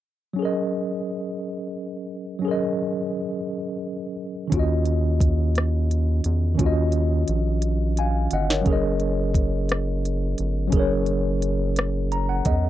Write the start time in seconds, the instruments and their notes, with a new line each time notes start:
0.33 tine electric piano F#3 C#4
0.39 tine electric piano G#4 A#4
0.45 tine electric piano D#5
2.39 tine electric piano F#3 C#4
2.45 tine electric piano G#4 A#4
2.51 tine electric piano D#5
4.48 tine electric piano D#3 C#4
4.52 analog synth bass D#2, tine electric piano F4 F#4, kick, closed hi-hat
4.59 tine electric piano D#5
4.85 closed hi-hat
5.20 kick, closed hi-hat
5.55 cross-stick, closed hi-hat
5.91 closed hi-hat
6.24 analog synth bass E2, closed hi-hat
6.55 tine electric piano D#3 C#4
6.59 analog synth bass D#2, tine electric piano F4, kick, closed hi-hat
6.63 tine electric piano F#4 D#5
6.92 closed hi-hat
7.28 analog synth bass A#1, closed hi-hat
7.62 closed hi-hat
7.97 tine electric piano F5 G#5, closed hi-hat
8.31 analog synth bass G1, tine electric piano D#5 F#5, closed hi-hat
8.50 tine electric piano A#4 C#5, snare
8.61 tine electric piano F#3 C#4
8.66 analog synth bass F#1, tine electric piano G#4, kick, closed hi-hat
8.70 tine electric piano A#4 D#5
9.00 closed hi-hat
9.34 kick, closed hi-hat
9.69 cross-stick, closed hi-hat
10.05 closed hi-hat
10.38 analog synth bass G1, closed hi-hat
10.67 tine electric piano F#3 C#4
10.72 analog synth bass F#1, tine electric piano G#4, kick, closed hi-hat
10.76 tine electric piano A#4 C#5
11.06 closed hi-hat
11.42 closed hi-hat
11.76 cross-stick, closed hi-hat
12.12 tine electric piano A#5, closed hi-hat
12.29 tine electric piano F#5
12.45 analog synth bass E2, tine electric piano D#5, kick, closed hi-hat